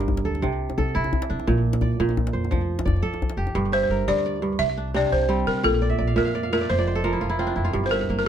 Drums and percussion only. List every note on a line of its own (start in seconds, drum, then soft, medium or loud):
0.00 djembe tone soft
0.08 djembe bass medium
0.17 djembe slap soft
0.26 djembe slap soft
0.35 djembe tone soft
0.44 djembe slap soft
0.44 djembe bass medium
0.70 djembe tone medium
0.78 djembe bass medium
1.04 djembe tone medium
1.13 djembe bass medium
1.22 djembe slap medium
1.39 djembe tone medium
1.48 djembe bass medium
1.73 djembe slap medium
1.73 djembe tone medium
1.81 djembe bass medium
1.91 djembe slap soft
2.09 djembe tone medium
2.17 djembe bass medium
2.27 djembe slap medium
2.44 djembe tone soft
2.52 djembe slap soft
2.52 djembe bass medium
2.61 djembe slap soft
2.79 djembe slap medium
2.79 djembe tone medium
2.88 djembe bass medium
2.96 djembe slap soft
3.06 djembe slap soft
3.14 djembe tone soft
3.22 djembe slap soft
3.22 djembe bass medium
3.30 djembe slap soft
3.39 djembe slap soft
3.47 djembe tone soft